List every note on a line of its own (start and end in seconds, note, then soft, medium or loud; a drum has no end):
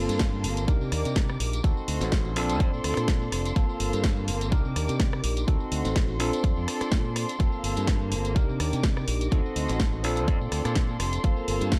0.00 0.63 A#3 medium
0.00 1.62 A#3 medium
0.00 0.64 C4 medium
0.00 0.64 F4 medium
0.00 0.64 A4 medium
0.00 0.67 F5 medium
0.00 0.67 A5 medium
0.00 0.67 C6 medium
0.09 0.45 G2 loud
0.09 closed hi-hat medium
0.09 tambourine medium
0.19 kick loud
0.19 snare loud
0.19 closed hi-hat medium
0.34 tambourine soft
0.44 0.68 G1 medium
0.44 open hi-hat loud
0.57 closed hi-hat medium
0.57 tambourine medium
0.67 0.78 C2 medium
0.67 1.59 D4 medium
0.67 1.60 D#4 medium
0.67 1.60 G4 medium
0.67 1.60 A#4 medium
0.67 1.63 D6 medium
0.67 kick loud
0.67 closed hi-hat medium
0.67 tambourine medium
0.81 0.89 C3 medium
0.81 tambourine soft
0.92 1.02 D#2 medium
0.92 cross-stick medium
0.92 open hi-hat loud
1.05 1.36 C3 medium
1.05 closed hi-hat medium
1.05 tambourine medium
1.15 kick loud
1.15 snare loud
1.15 closed hi-hat medium
1.15 tambourine medium
1.29 cross-stick medium
1.29 tambourine soft
1.40 1.59 A#1 loud
1.40 open hi-hat loud
1.53 closed hi-hat medium
1.53 tambourine medium
1.63 1.74 D2 medium
1.63 2.31 C4 medium
1.63 2.32 D#4 medium
1.63 2.35 F#4 medium
1.63 2.32 F#4 medium
1.63 2.32 A4 medium
1.63 4.49 C6 medium
1.63 kick loud
1.63 closed hi-hat medium
1.77 tambourine soft
1.88 1.98 D2 medium
1.88 open hi-hat loud
2.01 2.36 A1 loud
2.01 snare soft
2.01 closed hi-hat medium
2.01 tambourine medium
2.12 kick loud
2.12 snare loud
2.12 closed hi-hat medium
2.12 tambourine medium
2.25 tambourine soft
2.36 2.60 A#1 medium
2.36 3.52 C4 medium
2.36 3.52 D4 medium
2.36 3.52 F4 medium
2.36 3.55 A4 medium
2.36 3.52 A4 loud
2.36 3.55 D5 medium
2.36 open hi-hat loud
2.49 closed hi-hat medium
2.49 tambourine medium
2.60 2.70 F2 medium
2.60 kick loud
2.60 closed hi-hat medium
2.73 2.82 A#2 medium
2.73 tambourine soft
2.84 2.94 D2 medium
2.84 cross-stick medium
2.84 open hi-hat loud
2.97 3.28 A#2 medium
2.97 cross-stick medium
2.97 closed hi-hat medium
2.97 tambourine medium
3.08 kick loud
3.08 snare loud
3.08 closed hi-hat medium
3.08 tambourine medium
3.22 tambourine soft
3.32 3.51 F1 loud
3.32 cross-stick medium
3.32 open hi-hat loud
3.46 closed hi-hat medium
3.46 tambourine medium
3.55 4.47 A#3 medium
3.55 5.46 A#3 medium
3.55 4.48 C4 medium
3.55 4.48 F4 medium
3.55 4.48 A4 medium
3.55 4.51 F5 medium
3.55 4.51 A5 medium
3.55 kick loud
3.55 closed hi-hat soft
3.55 tambourine medium
3.69 tambourine soft
3.80 3.90 G1 medium
3.80 open hi-hat loud
3.93 4.29 G2 loud
3.93 closed hi-hat medium
3.93 tambourine medium
4.04 kick loud
4.04 snare loud
4.04 closed hi-hat soft
4.04 tambourine medium
4.17 tambourine soft
4.28 4.52 G1 medium
4.28 open hi-hat loud
4.41 closed hi-hat medium
4.41 tambourine medium
4.51 4.62 C2 medium
4.51 5.43 D4 medium
4.51 5.43 D#4 medium
4.51 5.44 G4 medium
4.51 5.44 A#4 medium
4.51 5.47 D6 medium
4.51 kick loud
4.51 closed hi-hat soft
4.51 tambourine medium
4.65 4.73 C3 medium
4.65 tambourine soft
4.76 4.86 D#2 medium
4.76 cross-stick medium
4.76 open hi-hat loud
4.88 5.20 C3 medium
4.88 closed hi-hat medium
4.88 tambourine medium
5.00 kick loud
5.00 snare loud
5.00 closed hi-hat soft
5.12 cross-stick medium
5.12 tambourine soft
5.24 5.43 A#1 medium
5.24 open hi-hat loud
5.37 closed hi-hat medium
5.37 tambourine medium
5.47 5.58 D2 loud
5.47 6.15 C4 medium
5.47 6.15 D#4 medium
5.47 6.19 F#4 medium
5.47 6.16 F#4 medium
5.47 6.16 A4 medium
5.47 8.33 C6 medium
5.47 kick loud
5.47 closed hi-hat soft
5.47 tambourine medium
5.60 muted fingered electric bass stroke soft
5.60 tambourine soft
5.72 5.82 D2 medium
5.72 open hi-hat loud
5.85 6.19 A1 loud
5.85 snare soft
5.85 closed hi-hat medium
5.85 tambourine medium
5.96 kick loud
5.96 snare loud
5.96 closed hi-hat soft
5.96 tambourine medium
6.08 tambourine soft
6.19 6.30 A#1 medium
6.19 7.35 C4 medium
6.19 7.35 D4 medium
6.19 7.36 F4 medium
6.19 7.39 A4 medium
6.19 7.36 A4 medium
6.19 7.39 D5 medium
6.19 open hi-hat loud
6.33 closed hi-hat medium
6.33 tambourine medium
6.44 6.54 F2 medium
6.44 kick loud
6.44 closed hi-hat soft
6.56 6.65 F2 medium
6.56 tambourine soft
6.68 cross-stick medium
6.68 open hi-hat loud
6.81 muted fingered electric bass stroke soft
6.81 cross-stick medium
6.81 closed hi-hat medium
6.81 tambourine medium
6.92 7.24 A#2 medium
6.92 kick loud
6.92 snare loud
6.92 closed hi-hat soft
7.05 tambourine soft
7.16 cross-stick medium
7.16 open hi-hat loud
7.29 closed hi-hat medium
7.29 tambourine medium
7.39 7.50 G1 loud
7.39 8.31 A#3 medium
7.39 9.30 A#3 medium
7.39 8.31 C4 medium
7.39 8.32 F4 medium
7.39 8.32 A4 medium
7.39 8.35 F5 medium
7.39 8.35 A5 medium
7.39 kick loud
7.39 closed hi-hat soft
7.52 tambourine soft
7.63 7.74 G1 medium
7.63 open hi-hat loud
7.77 8.13 G2 loud
7.77 closed hi-hat medium
7.77 tambourine medium
7.87 kick loud
7.87 snare loud
7.87 closed hi-hat soft
7.87 tambourine medium
8.01 tambourine soft
8.12 8.36 G1 medium
8.12 open hi-hat loud
8.25 closed hi-hat medium
8.25 tambourine medium
8.35 8.46 C2 medium
8.35 9.27 D4 medium
8.35 9.27 D#4 medium
8.35 9.28 G4 medium
8.35 9.28 A#4 medium
8.35 9.31 D6 medium
8.35 kick loud
8.35 closed hi-hat soft
8.35 tambourine medium
8.49 8.57 C3 medium
8.49 tambourine soft
8.60 8.70 D#2 medium
8.60 cross-stick medium
8.60 open hi-hat loud
8.73 9.04 C3 medium
8.73 closed hi-hat medium
8.73 tambourine medium
8.83 kick loud
8.83 snare loud
8.83 closed hi-hat soft
8.83 tambourine medium
8.97 cross-stick medium
8.97 tambourine soft
9.08 9.27 A#1 loud
9.08 open hi-hat loud
9.21 closed hi-hat medium
9.21 tambourine medium
9.31 9.42 D2 loud
9.31 9.99 C4 medium
9.31 10.00 D#4 medium
9.31 10.03 F#4 medium
9.31 10.00 F#4 medium
9.31 10.00 A4 medium
9.31 10.03 D#5 medium
9.31 10.03 C6 medium
9.31 kick loud
9.31 closed hi-hat medium
9.31 tambourine medium
9.46 tambourine soft
9.56 9.66 D2 medium
9.56 open hi-hat loud
9.68 10.04 A1 loud
9.68 snare soft
9.68 closed hi-hat medium
9.68 tambourine medium
9.80 kick loud
9.80 snare loud
9.80 closed hi-hat medium
9.93 tambourine soft
10.03 10.28 A#1 medium
10.03 11.19 C4 medium
10.03 11.20 D4 medium
10.03 11.20 F4 medium
10.03 11.23 A4 medium
10.03 11.20 A4 medium
10.03 11.23 D5 medium
10.03 11.79 C6 medium
10.03 open hi-hat medium
10.16 closed hi-hat medium
10.16 tambourine medium
10.28 10.38 F2 loud
10.28 kick loud
10.28 closed hi-hat soft
10.28 tambourine medium
10.41 10.49 A#2 medium
10.41 tambourine soft
10.52 10.62 D2 loud
10.52 cross-stick medium
10.52 open hi-hat loud
10.65 10.96 A#2 loud
10.65 cross-stick medium
10.65 closed hi-hat medium
10.65 tambourine medium
10.75 kick loud
10.75 snare loud
10.75 closed hi-hat soft
10.89 tambourine soft
11.00 11.19 F1 loud
11.00 cross-stick medium
11.00 open hi-hat loud
11.13 closed hi-hat medium
11.13 tambourine medium
11.23 11.34 G1 loud
11.23 11.79 A#3 medium
11.23 11.79 C4 medium
11.23 11.79 F4 medium
11.23 11.79 A4 medium
11.23 11.79 F5 medium
11.23 11.79 A5 medium
11.23 kick loud
11.23 closed hi-hat medium
11.37 tambourine soft
11.48 11.58 G1 medium
11.48 open hi-hat loud
11.61 11.79 G2 loud
11.61 closed hi-hat medium
11.61 tambourine medium
11.72 kick loud
11.72 snare loud
11.72 closed hi-hat medium
11.72 tambourine medium